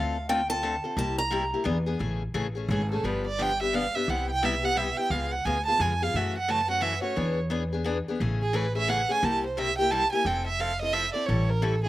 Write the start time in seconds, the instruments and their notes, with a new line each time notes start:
Already playing: upright bass D2, steel-string acoustic guitar D3 A3 C4 F4 A4 F5
0.29 steel-string acoustic guitar D3 A3 C4 F4 A4 G5
0.50 steel-string acoustic guitar C4 F4 A4 A5
0.63 steel-string acoustic guitar D3 A3 C4 F4 A4
0.84 steel-string acoustic guitar C4 F4 A4
0.97 upright bass C2, steel-string acoustic guitar C3 G3 A#3 E4 G4 A5
1.18 steel-string acoustic guitar A#5
1.30 steel-string acoustic guitar C3 G3 A#3 E4 G4
1.53 steel-string acoustic guitar A#3 E4 G4
1.64 upright bass E2, steel-string acoustic guitar E3 B3 D4 G#4
1.86 steel-string acoustic guitar B3 D4 G#4
1.99 upright bass A1, steel-string acoustic guitar C#3 E3 A3 C#4 G#4
2.34 upright bass A1, steel-string acoustic guitar C#3 E3 A3 C#4 G#4
2.55 steel-string acoustic guitar A3 C#4 G#4
2.68 upright bass G#1, steel-string acoustic guitar C#3 E3 A3 C#4 G#4, violin G#4
2.92 steel-string acoustic guitar A3 C#4 G#4, violin A4
3.04 upright bass G1, steel-string acoustic guitar D3 F3 B3 D4 G4, violin B4
3.27 violin D5
3.39 steel-string acoustic guitar D3 F3 B3 D4 G4, violin G5
3.61 steel-string acoustic guitar B3 D4 G4, violin E5
3.73 steel-string acoustic guitar D3 F3 B3 D4 G4, violin F5
3.95 steel-string acoustic guitar B3 D4 G4, violin E5
4.08 upright bass C2, steel-string acoustic guitar C3 G3 B3 E4 G4, violin F#5
4.30 violin G5
4.43 steel-string acoustic guitar C3 G3 B3 E4 G4, violin E5
4.63 steel-string acoustic guitar B3 E4 G4, violin F#5
4.76 steel-string acoustic guitar C3 G3 B3 E4 G4, violin E5
4.97 steel-string acoustic guitar B3 E4 G4, violin G5
5.10 upright bass C#2, steel-string acoustic guitar C#3 G#3 B3 F4 G#4, violin F5
5.31 violin F#5
5.45 upright bass D2, steel-string acoustic guitar C#3 G#3 B3 F4 G#4, violin G#5
5.66 steel-string acoustic guitar B3 F4 G#4, violin A5
5.80 upright bass F2, steel-string acoustic guitar C#3 G#3 B3 F4 G#4, violin G#5
6.02 steel-string acoustic guitar B3 F4 G#4, violin F5
6.14 upright bass F#2, steel-string acoustic guitar C#3 E3 A3 C#4 F#4, violin E5
6.38 violin F#5
6.48 steel-string acoustic guitar C#3 E3 A3 C#4 F#4, violin A5
6.68 steel-string acoustic guitar A3 C#4 F#4, violin F#5
6.80 steel-string acoustic guitar C#3 E3 A3 C#4 F#4, violin E5
7.02 steel-string acoustic guitar A3 C#4 F#4, violin C#5
7.16 upright bass E2, steel-string acoustic guitar E3 B3 D4 G#4
7.50 steel-string acoustic guitar E3 B3 D4 G#4
7.73 steel-string acoustic guitar B3 D4 G#4
7.84 steel-string acoustic guitar E3 B3 D4 G#4
8.08 steel-string acoustic guitar B3 D4 G#4
8.20 upright bass A1, steel-string acoustic guitar C#3 E3 A3 C#4 G#4
8.42 violin G#4
8.53 steel-string acoustic guitar C#3 E3 A3 C#4 G#4, violin B4
8.75 steel-string acoustic guitar A3 C#4 G#4, violin E5
8.87 steel-string acoustic guitar C#3 E3 A3 C#4 G#4, violin F#5
9.09 steel-string acoustic guitar A3 C#4 G#4, violin G#5
9.23 upright bass C2, steel-string acoustic guitar C3 G3 A#3 E4 G4, violin A5
9.46 violin C5
9.57 steel-string acoustic guitar C3 G3 A#3 E4 G4, violin E5
9.78 steel-string acoustic guitar A#3 E4 G4, violin G5
9.91 steel-string acoustic guitar C3 G3 A#3 E4 G4, violin A5
10.12 steel-string acoustic guitar A#3 E4 G4, violin G#5
10.25 upright bass F1, steel-string acoustic guitar F3 C4 E4 A4, violin G5
10.47 violin E5
10.59 steel-string acoustic guitar F3 C4 E4 A4, violin F5
10.82 steel-string acoustic guitar C4 E4 A4, violin D#5
10.93 steel-string acoustic guitar F3 C4 E4 A4, violin E5
11.14 steel-string acoustic guitar C4 E4 A4, violin D5
11.26 upright bass A1, steel-string acoustic guitar E3 G3 C#4 E4 A4, violin C#5
11.49 violin A#4
11.62 steel-string acoustic guitar E3 G3 C#4 E4 A4, violin A4
11.84 steel-string acoustic guitar C#4 E4 A4, violin G#4